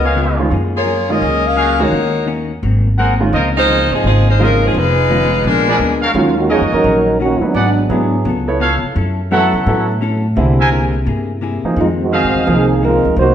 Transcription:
Already playing: upright bass C#2, saxophone section B3 A#4 D#5
0.04 trumpet section B3 G#4 C#5 F5
0.16 hollow-body jazz guitar C#3 G#3 B3 F4
0.39 grand piano D#3 G#3 C#4 F4
0.50 upright bass F#2, hollow-body jazz guitar F#3 A#3 F4 G#4
0.76 saxophone section A#3 F4 G#4 C#5
0.85 hollow-body jazz guitar F#3 A#3 F4 G#4
1.09 grand piano D#3 G#3 C#4 F4, saxophone section C#4 G#4 A#4 D#5
1.21 upright bass C#2, hollow-body jazz guitar F#3 A#3 F4 G#4
1.45 saxophone section C#4 G#4 A#4 F5
1.56 hollow-body jazz guitar F#3 A#3 F4 G#4, trumpet section F#4 G#4 A#4 F5
1.80 grand piano D#3 G#3 C#4 F#4, saxophone section A#3 D#4 F#4 C#5
1.91 upright bass D#2, hollow-body jazz guitar D#3 A#3 C#4 F#4
2.26 hollow-body jazz guitar D#3 A#3 C#4 F#4
2.62 upright bass G#1, hollow-body jazz guitar G#2 F#3 A#3 C4
2.98 hollow-body jazz guitar G#2 F#3 A#3 C4, trumpet section G#4 A#4 C5 F#5
3.20 grand piano D#3 G#3 C#4 F4
3.33 upright bass C#2, hollow-body jazz guitar C#3 F3 A#3, trumpet section F4 A#4 C5 D#5
3.37 hollow-body jazz guitar C4
3.57 saxophone section G#3 D#4 F4 C5
3.69 hollow-body jazz guitar C#3 F3 A#3 C4
3.91 upright bass G#2, saxophone section F3 C4 D#4 G#4
4.03 upright bass G#1, hollow-body jazz guitar C#3 F3 A#3 C4, saxophone section F3 C4 D#4 G#4
4.30 saxophone section G#3 D#4 F4 C5
4.39 hollow-body jazz guitar C#3 F3 A#3 C4, grand piano D#3 G#3 C#4 F4, trumpet section F4 A#4 C5 D#5, saxophone section F4 A#4
4.43 saxophone section G#3 D#4
4.65 saxophone section F3 C4 D#4 G#4
4.74 upright bass F1, hollow-body jazz guitar F3 B3 D#4, saxophone section G#3 D#4 F4 B4
4.79 hollow-body jazz guitar G#4
5.10 grand piano D#3 G#3 C#4 F4, hollow-body jazz guitar F3 B3 D#4 G#4
5.44 upright bass A#1, hollow-body jazz guitar A#2 G#3 B3 D4, saxophone section G#3 D4 F4 A#4
5.68 grand piano F3 G#3 B3 D4, trumpet section G#4 A#4 B4 D5
5.79 upright bass D2, hollow-body jazz guitar A#2 G#3 B3 D4
6.02 trumpet section F#4 A#4 C#5 F5
6.14 upright bass D#2, hollow-body jazz guitar D#3 A#3 C#4 F#4, grand piano D#3 G#3 C#4 F4, trombone section F#3 A#3 C#4 F4
6.38 trombone section D#3 A#3 C#4 F#4
6.50 hollow-body jazz guitar D#3 A#3 C#4 F#4, trombone section F3 A#3 C#4 G#4, trumpet section F#4 A#4 C#5 D#5
6.61 upright bass F#2
6.73 upright bass E2, trombone section F#3 C#4 D#4 A#4
6.84 upright bass A#1, hollow-body jazz guitar D#3 A#3 C#4 F#4
7.20 hollow-body jazz guitar D#3 A#3 C#4 F#4, trombone section D#3 A#3 C#4 F#4
7.41 grand piano F#3 B3 E4 B4, trombone section F#3 G#3 B3 D4, muted upright bass stroke
7.53 upright bass G#1, hollow-body jazz guitar G#2 F#3 B3 D4, trumpet section G#4 B4 D5 F#5
7.90 upright bass G#2, hollow-body jazz guitar G#2 F#3 B3 D4, grand piano F#3 B3 E4 G#4
8.25 upright bass C#2, hollow-body jazz guitar C#3 B3 F4 A4
8.48 grand piano B3 E4 A4 C#5
8.60 hollow-body jazz guitar C#3 B3 F4 A4, trumpet section A4 B4 C#5 F5
8.83 muted upright bass stroke
8.95 upright bass F#2, hollow-body jazz guitar F#3 C#4 E4 A4
9.31 hollow-body jazz guitar F#3 C#4 E4 A4, grand piano F#3 B3 E4 A4, trumpet section A4 C#5 E5 F#5
9.53 upright bass C#3
9.66 upright bass A2, hollow-body jazz guitar F#3 C#4 E4 A4, grand piano F#3 B3 E4 A4
10.01 hollow-body jazz guitar F#3 C#4 E4 A4
10.35 upright bass C2, hollow-body jazz guitar C3 A#3 E4 G#4, grand piano D3 G3 C4 E4
10.60 trumpet section A#4 C5 E5 G#5
10.71 hollow-body jazz guitar C3 A#3 E4 G#4
11.05 upright bass G2, hollow-body jazz guitar C3 A#3 E4 G#4
11.41 hollow-body jazz guitar C3 A#3 E4 G#4
11.64 grand piano F3 A#3 D#4 G#4, muted upright bass stroke
11.76 upright bass F2, hollow-body jazz guitar F2 D#3 G#3, trombone section G#3 C4 D#4 F4
11.81 hollow-body jazz guitar C4
12.02 trombone section D#3 G#3 C4 F#4
12.12 hollow-body jazz guitar F2 D#3 G#3 C4, trumpet section G#4 C5 D#5 F5
12.24 upright bass G#2
12.35 upright bass D#2
12.47 upright bass C2, hollow-body jazz guitar F2 D#3 G#3 C4, grand piano F3 A#3 D#4 G#4, trombone section F3 C4 D#4 G#4
12.82 hollow-body jazz guitar F2 D#3 G#3 C4, trombone section G#3 D#4 F4 A#4
13.05 upright bass C#2
13.16 upright bass C2, hollow-body jazz guitar C3 F#3 A#3, trombone section A#3 D#4 F#4 C5
13.21 hollow-body jazz guitar D#4

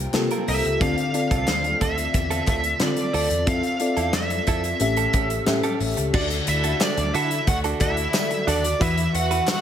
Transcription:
Already playing: fm electric piano A#3 F4 G4 C5
0.13 picked electric bass C3, fm electric piano A#3 F4 G4 A4, muted clean electric guitar stroke, snare, clap
0.31 clean electric guitar C4 F4 A#4, closed hi-hat
0.48 picked electric bass C2, clean electric guitar C4 F4 A#4, lead electric guitar E5, open hi-hat
0.65 picked electric bass C#2, muted clean electric guitar stroke, closed hi-hat
0.80 picked electric bass D2, fm electric piano D3 C4 F4 A4 D5, clean electric guitar C4 F4 A4, lead electric guitar F5, kick, closed hi-hat
0.98 muted clean electric guitar stroke, closed hi-hat
1.14 fm electric piano C4 F4 A4 D5, muted clean electric guitar stroke, closed hi-hat
1.31 picked electric bass C2, clean electric guitar C4 F4 A4, kick, closed hi-hat
1.47 picked electric bass D2, snare, clap
1.64 muted clean electric guitar stroke, closed hi-hat
1.81 picked electric bass D2, clean electric guitar C4 F4 A4, lead electric guitar E5, kick, closed hi-hat
1.97 muted clean electric guitar stroke, closed hi-hat
2.14 picked electric bass E2, muted clean electric guitar stroke, kick, closed hi-hat
2.30 clean electric guitar C4 F4 A4, closed hi-hat
2.47 picked electric bass D2, clean electric guitar C4 F4 A4, kick, clap, closed hi-hat
2.64 muted clean electric guitar stroke, closed hi-hat
2.80 picked electric bass D3, fm electric piano C4 F4 A4 D5, lead electric guitar D5, muted clean electric guitar stroke, snare, clap
2.97 muted clean electric guitar stroke, closed hi-hat
3.13 picked electric bass D2, clean electric guitar C4 F4 A4, open hi-hat
3.30 picked electric bass E2, muted clean electric guitar stroke, closed hi-hat
3.47 picked electric bass F2, fm electric piano C4 F4 A4 E5, clean electric guitar C4 E4 A4, lead electric guitar F5, kick, closed hi-hat
3.63 muted clean electric guitar stroke, closed hi-hat
3.80 fm electric piano C4 F4 A4 D5, muted clean electric guitar stroke, closed hi-hat
3.97 picked electric bass E2, clean electric guitar C4 E4 A4, closed hi-hat
4.13 picked electric bass F2, lead electric guitar E5, snare, clap
4.30 muted clean electric guitar stroke, closed hi-hat
4.47 picked electric bass F2, clean electric guitar C4 E4 A4, kick, closed hi-hat
4.64 muted clean electric guitar stroke, closed hi-hat
4.80 picked electric bass A1, fm electric piano A2 C#4 G4 A4 E5, muted clean electric guitar stroke, closed hi-hat
4.97 clean electric guitar C#4 G4 A4, closed hi-hat
5.13 picked electric bass A1, clean electric guitar C#4 G4 A4, kick, clap, closed hi-hat
5.30 muted clean electric guitar stroke, closed hi-hat
5.46 picked electric bass A2, fm electric piano C#4 G4 A4 E5, muted clean electric guitar stroke, snare, clap
5.63 clean electric guitar C#4 G4 A4, closed hi-hat
5.80 picked electric bass A1, muted clean electric guitar stroke, open hi-hat
5.97 picked electric bass C#2, muted clean electric guitar stroke, closed hi-hat
6.13 picked electric bass D2, fm electric piano D3 F#4 A4 D5, clean electric guitar D4 F#4 A4, violin section D4, lead electric guitar D5, kick, crash
6.30 muted clean electric guitar stroke, closed hi-hat
6.47 picked electric bass D2, violin section E4, lead electric guitar E5, muted clean electric guitar stroke, closed hi-hat
6.64 clean electric guitar D4 F#4 A4, closed hi-hat
6.80 violin section D4, lead electric guitar D5, snare, clap, tambourine
6.97 picked electric bass D2, muted clean electric guitar stroke, closed hi-hat
7.14 picked electric bass D3, clean electric guitar D4 F#4 A4, violin section E4, lead electric guitar E5, closed hi-hat
7.31 muted clean electric guitar stroke, closed hi-hat
7.47 picked electric bass D2, violin section F#4, lead electric guitar F#5, muted clean electric guitar stroke, kick, closed hi-hat
7.64 clean electric guitar D4 F#4 A4, closed hi-hat
7.80 picked electric bass D2, clean electric guitar D4 F#4 A4, violin section E4, fm electric piano F#4 A4 D5, lead electric guitar E5, kick, clap, closed hi-hat
7.97 muted clean electric guitar stroke, closed hi-hat
8.14 muted clean electric guitar stroke, snare, clap, tambourine
8.31 muted clean electric guitar stroke, closed hi-hat
8.47 picked electric bass D#2, clean electric guitar D4 F#4 A4, violin section D4, lead electric guitar D5, closed hi-hat
8.64 muted clean electric guitar stroke, closed hi-hat
8.80 picked electric bass E2, fm electric piano E3 F#4 B4 E5, clean electric guitar E4 F#4 B4, violin section E4, lead electric guitar E5, kick, closed hi-hat
8.97 muted clean electric guitar stroke, closed hi-hat
9.14 picked electric bass E2, violin section F#4, lead electric guitar F#5, muted clean electric guitar stroke, closed hi-hat
9.31 clean electric guitar E4 F#4 B4, closed hi-hat
9.47 violin section F#4, lead electric guitar F#5, snare, clap, tambourine

